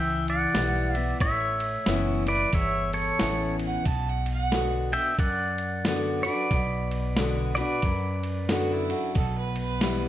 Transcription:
Already playing: C#2 E3 E5 G5
0.28 D5 F#5, ride
0.55 B1 E3 G3 B3 E4, snare, ride
0.95 B3 E4 E5, ride
1.20 A1 A2 C#5 E5, kick, ride
1.60 ride
1.86 F#1 E3 B3 C#4 E4, snare, ride
2.26 E4 B4 D5, ride
2.53 G1 E2 C#5 E5, kick, ride
2.93 A4 C#5, ride
3.19 A1 E3 B3 C#4 E4, snare, ride
3.59 ride
3.66 F#5
3.85 B1 B2 A5, kick, ride
4.09 F#5
4.26 ride
4.32 F#5
4.51 D3 B3 D4 F#4, snare, ride
4.93 D4 E5 G5, ride
5.19 F#2 D5 F#5, kick, ride
5.58 ride
5.85 D3 B3 D4 F#4, snare, ride
6.23 F#4 B4 D5, ride
6.28 D4
6.51 B1 B2, kick, ride
6.91 ride
7.17 D3 B3 D4 F#4, snare, ride
7.55 F#4 B4 D5, ride
7.60 D4
7.82 F#2, kick, ride
8.23 ride
8.49 D3 B3 D4 F#4, snare, ride
8.72 E4
8.90 D4 F#4, ride
9.15 B1 B2 A4, kick, ride
9.38 B4
9.56 B4, ride
9.81 E3 G3 B3 E4, snare, ride

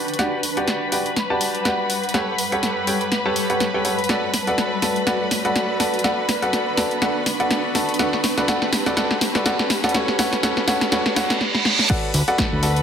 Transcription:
Already playing: G3 D4 F#4 G4 B4 D5 F#5 A5 B5 C#6, riser
0.08 F#5, closed hi-hat
0.14 closed hi-hat
0.19 F#4 G4 B4 D5 F#5, snare, closed hi-hat
0.43 open hi-hat
0.57 F#4 G4 B4 D5 F#5, closed hi-hat
0.68 snare, closed hi-hat
0.92 F#4 G4 B4 D5 G5, open hi-hat
1.06 closed hi-hat
1.16 snare, closed hi-hat
1.30 F#4 G4 B4 D5 A5
1.41 open hi-hat
1.55 closed hi-hat
1.65 F#4 G4 B4 D5 F#5, snare, closed hi-hat
1.90 open hi-hat
2.04 closed hi-hat
2.09 closed hi-hat
2.14 G4 A4 B4 C#5 F#5, snare, closed hi-hat
2.38 open hi-hat
2.52 G4 A4 B4 C#5 F#5, closed hi-hat
2.63 C#5, snare, closed hi-hat
2.87 G4 A4 B4 C#5 G5 A5, open hi-hat
3.01 B5, closed hi-hat
3.12 snare, closed hi-hat
3.25 G4 A4 B4 C#5 A5
3.36 open hi-hat
3.50 G4 A4 B4 C#5 F#5, closed hi-hat
3.60 snare, closed hi-hat
3.74 G4 A4 B4 C#5 G5
3.85 G4 A4 B4 C#5 F#5, open hi-hat
3.99 closed hi-hat
4.04 closed hi-hat
4.09 F#4 A4 B4 D5 F#5, snare, closed hi-hat
4.34 snare, open hi-hat
4.47 F#4 A4 B4 D5 F#5, closed hi-hat
4.54 D5, snare, closed hi-hat
4.82 F#4 A4 B4 D5 A5, snare, open hi-hat
4.96 closed hi-hat
5.07 F#4 A4 B4 D5 F#5, snare, closed hi-hat
5.31 snare, open hi-hat
5.45 F#4 A4 B4 D5 F#5, closed hi-hat
5.56 snare, closed hi-hat
5.80 F#4 A4 B4 D5 A5, snare, open hi-hat
5.94 closed hi-hat
5.99 closed hi-hat
6.04 D4 F#4 A4 B4 D5 F#5, snare, closed hi-hat
6.19 C#6
6.29 snare, open hi-hat
6.42 F#4 A4 B4 D5 F#5, closed hi-hat
6.53 snare, closed hi-hat
6.77 F#4 A4 B4 D5 A5, snare, open hi-hat
6.82 A5
6.91 closed hi-hat
7.02 F#4 A4 B4 D5 F#5, snare, closed hi-hat
7.26 snare, open hi-hat
7.40 F#4 A4 B4 D5 F#5, closed hi-hat
7.51 snare, closed hi-hat
7.75 F#4 G4 A4 B4 D5 A5, snare, open hi-hat
7.89 closed hi-hat
7.94 closed hi-hat
7.99 F#4 A4 B4 D5 F#5, snare, closed hi-hat
8.13 snare
8.24 snare, open hi-hat
8.38 F#4 A4 B4 D5 F#5, snare, closed hi-hat
8.48 F#4 A4 B4 D5 F#5, snare, closed hi-hat
8.62 F#5, snare
8.73 snare, open hi-hat
8.86 F#4 A4 B4 D5 F#5, snare, closed hi-hat
8.97 F#4 A4 B4 D5 F#5, snare, closed hi-hat
9.11 snare
9.21 snare, open hi-hat
9.35 F#4 A4 B4 D5 F#5, snare, closed hi-hat
9.46 F#4 A4 B4 D5 F#5, snare, closed hi-hat
9.59 snare
9.70 snare, open hi-hat
9.84 F#4 A4 B4 D5 F#5, snare, closed hi-hat
9.89 closed hi-hat
9.94 F#4 A4 B4 C#5 F#5, snare, closed hi-hat
10.08 snare
10.12 C#5
10.19 F#4 A4 B4 C#5 F#5, snare, open hi-hat
10.33 snare, closed hi-hat
10.43 F#4 A4 B4 C#5 F#5, snare, closed hi-hat
10.57 snare
10.68 F#4 A4 B4 C#5 F#5, snare, open hi-hat
10.81 snare, closed hi-hat
10.92 F#4 A4 B4 C#5 F#5, snare, closed hi-hat, reverse cymbal
11.06 snare
11.16 F#4 A4 B4 C#5 F#5, snare, open hi-hat
11.30 snare, closed hi-hat
11.41 snare
11.55 snare
11.65 snare
11.79 snare
11.90 F#4 A4 B4 D5 F#5 B5, kick, closed hi-hat, crash
12.08 D5
12.14 D2, open hi-hat
12.28 F#4 A4 B4 D5 F#5, closed hi-hat
12.38 kick, cross-stick, snare, closed hi-hat
12.52 D2
12.63 F#4 A4 B4 D5 A5, open hi-hat
12.77 closed hi-hat

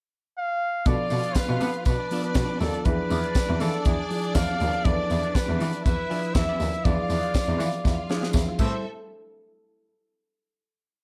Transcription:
0.38 F5
0.86 B2 F3 B3 D4 F4 A4 D5 F5, kick, closed hi-hat, tambourine
1.00 muted clean electric guitar stroke
1.10 B2 B3 F4 A4 D5, open hi-hat, tambourine
1.23 B3 F4 A4 D5, closed hi-hat
1.35 B4, kick, snare, closed hi-hat, tambourine
1.49 B2, muted clean electric guitar stroke
1.60 B3 F4 A4 D5, open hi-hat, tambourine
1.73 muted clean electric guitar stroke, closed hi-hat
1.85 B2 D4 B4 D5, kick, closed hi-hat, tambourine
2.00 muted clean electric guitar stroke
2.11 F3 B3 D4 F4 A4 D5, open hi-hat
2.24 B4, muted clean electric guitar stroke, closed hi-hat
2.34 B2, kick, snare, closed hi-hat, tambourine
2.50 muted clean electric guitar stroke
2.60 D#2 B3 F4 A4 D5, snare, open hi-hat, tambourine
2.74 B3 F4 A4 D5, closed hi-hat
2.85 E2 F3 B3 D4 E4 F4 G#4 B4 D5, kick, closed hi-hat
2.98 muted clean electric guitar stroke
3.10 E2 B3 F4 G#4 D5, open hi-hat, tambourine
3.24 B3 F4 G#4 D5, closed hi-hat
3.35 kick, snare, closed hi-hat, tambourine
3.49 E2, muted clean electric guitar stroke
3.60 E3 B3 F4 G#4 A4 D5, open hi-hat, tambourine
3.73 muted clean electric guitar stroke, closed hi-hat
3.85 E2 G#4, muted clean electric guitar stroke, kick, closed hi-hat, tambourine
4.10 F3 D4 E4 G#4, open hi-hat
4.24 muted clean electric guitar stroke, closed hi-hat
4.35 E2 F5, muted clean electric guitar stroke, kick, snare, closed hi-hat, tambourine
4.50 muted clean electric guitar stroke
4.60 D#2 B3 F4 G#4 D5, open hi-hat, tambourine
4.73 B3 F4 G#4 D5, closed hi-hat
4.85 E2 F3 B3 D4 E4 F4 G#4 A4 D5, kick, closed hi-hat
4.93 B4
4.99 muted clean electric guitar stroke
5.10 E2 B3 F4 G#4 D5, open hi-hat, tambourine
5.23 B3 F4 G#4 D5, closed hi-hat
5.35 B4, kick, snare, closed hi-hat, tambourine
5.49 E2, muted clean electric guitar stroke
5.60 E3 B3 F4 G#4 D5, open hi-hat, tambourine
5.73 muted clean electric guitar stroke, closed hi-hat
5.85 E2 E4 B4 E5, kick, closed hi-hat, tambourine
5.98 muted clean electric guitar stroke
6.10 F3 B3 D4 E4 F4 G#4 B4 D5, open hi-hat
6.23 muted clean electric guitar stroke, closed hi-hat
6.35 E2 E5, muted clean electric guitar stroke, kick, snare, closed hi-hat, tambourine
6.49 B3 F4 G#4 D5
6.60 D#2 B3 F4 G#4 D5, open hi-hat, tambourine
6.74 muted clean electric guitar stroke, closed hi-hat
6.84 E2 F3 B3 D4 E4 F4 G#4 D5 F5, kick, closed hi-hat, tambourine
6.99 muted clean electric guitar stroke
7.09 E2 B3 F4 G#4 D5, open hi-hat, tambourine
7.23 B3 F4 G#4 D5, closed hi-hat
7.34 kick, snare, closed hi-hat, tambourine
7.48 E2, muted clean electric guitar stroke
7.59 E3 B3 F4 G#4 D5, open hi-hat, tambourine
7.72 muted clean electric guitar stroke, closed hi-hat
7.85 E2 F4 F5, kick, snare, tambourine
7.98 muted clean electric guitar stroke
8.09 F3 B3 D4 E4 F4 G#4 D5, snare, tambourine
8.23 muted clean electric guitar stroke, snare
8.33 E2, muted clean electric guitar stroke, kick, snare, tambourine
8.49 muted clean electric guitar stroke
8.59 A2 G3 A3 C4 E4 G4 A4 C5 E5, kick, crash, tambourine

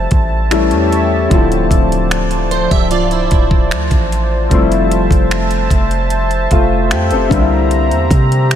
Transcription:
Already playing: F3 G3 A3 C4 E4 C5 E5 A5
0.11 A1, kick, closed hi-hat
0.50 E3 G3 A3 C#4 E4 G4 C#5 E5, finger snap, closed hi-hat
0.71 E2, closed hi-hat
0.92 closed hi-hat
1.29 D1 D3 F3 A3 C5 D5, kick, closed hi-hat
1.33 C4 E4
1.52 closed hi-hat
1.71 D1, kick, closed hi-hat
1.92 closed hi-hat
2.11 finger snap, closed hi-hat
2.31 closed hi-hat
2.51 E4 C5, closed hi-hat
2.71 C1 G4 E5, kick, closed hi-hat
2.91 F4 D5, closed hi-hat
3.11 E4 C5, closed hi-hat
3.31 D1, kick, closed hi-hat
3.51 kick
3.71 D2, finger snap, closed hi-hat
3.91 A1, kick, closed hi-hat
4.12 closed hi-hat
4.49 F1 F3 G3 A3 E5 A5, kick, closed hi-hat
4.54 C4 E4
4.72 closed hi-hat
4.91 closed hi-hat
5.11 F1, kick, closed hi-hat
5.31 finger snap, closed hi-hat
5.51 closed hi-hat
5.70 F1, kick, closed hi-hat
5.91 closed hi-hat
6.10 closed hi-hat
6.31 closed hi-hat
6.51 F1 A3 F4, kick, closed hi-hat
6.91 F2 G4, finger snap, closed hi-hat
7.11 F1 C4 A4, closed hi-hat
7.29 C2 D3 G3 A#3 G4 A#5, kick, closed hi-hat
7.33 C4 D4
7.41 E4
7.71 closed hi-hat
7.91 E2, closed hi-hat
8.11 C3, kick, closed hi-hat
8.32 closed hi-hat
8.51 finger snap, closed hi-hat

